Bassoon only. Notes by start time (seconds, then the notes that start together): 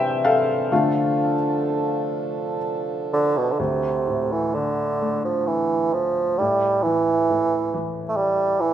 3.13 D3
3.38 B2
3.52 D3
3.59 C3
4.32 E3
4.55 D3
5.25 F3
5.47 E3
5.94 F3
6.38 G3
6.83 E3
8.09 A3
8.17 G3
8.60 E3